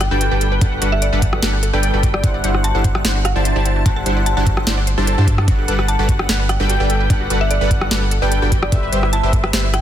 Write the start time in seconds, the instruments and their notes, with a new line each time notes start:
Already playing: impact
0.01 synth arpeggio sound D5, synth pluck G5, cross-stick, closed hi-hat
0.11 sub bass G1, supersaw synth G3 D4 A4 B4 G5, synth arpeggio sound F#4, digital synth lead G5
0.21 synth arpeggio sound F#4, closed hi-hat
0.31 sub bass G1, supersaw synth G3 D4 A4 B4 G5, synth arpeggio sound G4, digital synth lead G5
0.41 synth arpeggio sound A4, closed hi-hat
0.52 synth arpeggio sound B4
0.61 sub bass G1, supersaw synth G3 D4 A4 B4 F#5, synth arpeggio sound D5, digital synth lead F#5, kick, closed hi-hat
0.72 synth arpeggio sound F#4
0.82 sub bass G1, supersaw synth G3 D4 A4 B4 F#5, synth arpeggio sound F#4, digital synth lead F#5, closed hi-hat
0.92 synth arpeggio sound G4, synth pluck E5
1.02 synth arpeggio sound A4, synth pluck D5, closed hi-hat
1.13 sub bass G1, supersaw synth G3 D4 A4 B4 F#5, synth arpeggio sound B4, digital synth lead F#5
1.22 synth arpeggio sound D5, kick, closed hi-hat
1.33 synth arpeggio sound F#4, cross-stick
1.43 sub bass G1, supersaw synth G3 D4 A4 B4 F#5, synth arpeggio sound F#4, digital synth lead F#5, snare, closed hi-hat
1.53 synth arpeggio sound G4
1.63 synth arpeggio sound A4, closed hi-hat
1.73 sub bass G1, supersaw synth G3 D4 A4 B4 G5, synth arpeggio sound B4, digital synth lead G5
1.83 synth arpeggio sound D5, closed hi-hat
1.94 sub bass G1, supersaw synth G3 D4 A4 B4 G5, synth arpeggio sound F#4, digital synth lead G5
2.03 synth arpeggio sound F#4, kick, closed hi-hat
2.14 synth arpeggio sound G4, synth pluck D5, cross-stick
2.24 sub bass G1, supersaw synth G3 D4 E4 C5 F#5, synth arpeggio sound C5, digital synth lead F#5, kick, closed hi-hat
2.34 synth arpeggio sound D5
2.44 sub bass G1, supersaw synth G3 D4 E4 C5 F#5, digital synth lead F#5, synth arpeggio sound F#5, closed hi-hat
2.54 synth arpeggio sound F#4, cross-stick
2.64 synth arpeggio sound F#4, synth pluck A5, closed hi-hat
2.75 sub bass G1, supersaw synth G3 D4 E4 C5 F#5, synth arpeggio sound A4, digital synth lead F#5
2.84 synth arpeggio sound C5, kick, closed hi-hat
2.95 synth arpeggio sound D5, cross-stick
3.05 sub bass G1, supersaw synth G3 D4 E4 C5 F#5, digital synth lead F#5, synth arpeggio sound F#5, snare, closed hi-hat
3.15 synth arpeggio sound F#4
3.25 synth arpeggio sound F#4, synth pluck F#5, cross-stick, closed hi-hat
3.36 sub bass G1, supersaw synth G3 D4 E4 C5 A5, synth arpeggio sound A4, digital synth lead A5
3.45 synth arpeggio sound C5, closed hi-hat
3.56 sub bass G1, supersaw synth G3 D4 E4 C5 A5, synth arpeggio sound D5, digital synth lead A5
3.65 synth arpeggio sound F#5, closed hi-hat
3.76 synth arpeggio sound F#4
3.86 sub bass G1, supersaw synth G3 D4 E4 C5 F#5, synth arpeggio sound F#4, digital synth lead F#5, synth pluck A5, kick, closed hi-hat
3.96 synth arpeggio sound A4, synth pluck A5
4.06 sub bass G1, supersaw synth G3 D4 E4 C5 F#5, synth arpeggio sound C5, digital synth lead F#5, closed hi-hat
4.17 synth arpeggio sound D5
4.26 synth arpeggio sound F#5, synth pluck A5, closed hi-hat
4.37 sub bass G1, supersaw synth G3 D4 E4 C5 F#5, synth arpeggio sound F#4, digital synth lead F#5, synth pluck A5
4.47 synth arpeggio sound F#4, kick, closed hi-hat
4.57 synth arpeggio sound A4, cross-stick
4.67 sub bass G1, supersaw synth G3 D4 E4 C5 F#5, synth arpeggio sound C5, digital synth lead F#5, snare, closed hi-hat
4.77 synth arpeggio sound D5
4.87 synth arpeggio sound C5, closed hi-hat
4.98 sub bass G1, supersaw synth G3 D4 E4 C5 A5, synth arpeggio sound A4, digital synth lead A5
5.07 synth arpeggio sound A4, closed hi-hat
5.18 sub bass G2, supersaw synth G3 D4 E4 C5 A5, synth arpeggio sound F#5, digital synth lead A5
5.28 synth arpeggio sound F#4, kick, closed hi-hat
5.38 synth arpeggio sound F#5, cross-stick
5.48 sub bass G1, supersaw synth G3 D4 A4 B4 F#5, synth arpeggio sound F#4, digital synth lead F#5, kick, closed hi-hat
5.58 synth arpeggio sound G4
5.68 sub bass G1, supersaw synth G3 D4 A4 B4 F#5, synth arpeggio sound A4, digital synth lead F#5, closed hi-hat
5.79 synth arpeggio sound B4, cross-stick
5.88 synth arpeggio sound D5, synth pluck A5, closed hi-hat
5.99 sub bass G1, supersaw synth G3 D4 A4 B4 F#5, synth arpeggio sound F#4, digital synth lead F#5
6.09 synth arpeggio sound F#4, kick, closed hi-hat
6.19 synth arpeggio sound G4, cross-stick
6.29 sub bass G1, supersaw synth G3 D4 A4 B4 F#5, synth arpeggio sound A4, digital synth lead F#5, snare, closed hi-hat
6.40 synth arpeggio sound B4
6.49 synth arpeggio sound D5, synth pluck G5, cross-stick, closed hi-hat
6.60 sub bass G1, supersaw synth G3 D4 A4 B4 G5, synth arpeggio sound F#4, digital synth lead G5
6.70 synth arpeggio sound F#4, closed hi-hat
6.80 sub bass G1, supersaw synth G3 D4 A4 B4 G5, synth arpeggio sound G4, digital synth lead G5
6.90 synth arpeggio sound A4, closed hi-hat
7.00 synth arpeggio sound B4
7.10 sub bass G1, supersaw synth G3 D4 A4 B4 F#5, synth arpeggio sound D5, digital synth lead F#5, kick, closed hi-hat
7.21 synth arpeggio sound F#4
7.30 sub bass G1, supersaw synth G3 D4 A4 B4 F#5, synth arpeggio sound F#4, digital synth lead F#5, closed hi-hat
7.41 synth arpeggio sound G4, synth pluck E5
7.51 synth arpeggio sound A4, synth pluck D5, closed hi-hat
7.61 sub bass G1, supersaw synth G3 D4 A4 B4 F#5, synth arpeggio sound B4, digital synth lead F#5
7.71 synth arpeggio sound D5, kick, closed hi-hat
7.81 synth arpeggio sound F#4, cross-stick
7.91 sub bass G1, supersaw synth G3 D4 A4 B4 F#5, synth arpeggio sound F#4, digital synth lead F#5, snare, closed hi-hat
8.02 synth arpeggio sound G4
8.11 synth arpeggio sound A4, closed hi-hat
8.22 sub bass G1, supersaw synth G3 D4 A4 B4 G5, synth arpeggio sound B4, digital synth lead G5
8.32 synth arpeggio sound D5, closed hi-hat
8.42 sub bass G1, supersaw synth G3 D4 A4 B4 G5, synth arpeggio sound F#4, digital synth lead G5
8.52 synth arpeggio sound F#4, kick, closed hi-hat
8.63 synth arpeggio sound G4, synth pluck D5, cross-stick
8.72 sub bass G1, supersaw synth G3 G4 B4 C5 E5, synth arpeggio sound A4, digital synth lead E5, kick, closed hi-hat
8.83 synth arpeggio sound B4
8.92 sub bass G1, supersaw synth G3 G4 B4 C5 E5, synth arpeggio sound C5, digital synth lead E5, closed hi-hat
9.03 synth arpeggio sound E4, cross-stick
9.13 synth arpeggio sound E4, synth pluck A5, closed hi-hat
9.23 sub bass G1, supersaw synth G3 G4 B4 C5 E5, synth arpeggio sound G4, digital synth lead E5
9.33 synth arpeggio sound A4, kick, closed hi-hat
9.44 synth arpeggio sound B4, cross-stick
9.53 sub bass G1, supersaw synth G3 G4 B4 C5 E5, synth arpeggio sound C5, digital synth lead E5, snare, closed hi-hat
9.64 synth arpeggio sound E4
9.74 synth arpeggio sound E4, synth pluck G5, cross-stick, closed hi-hat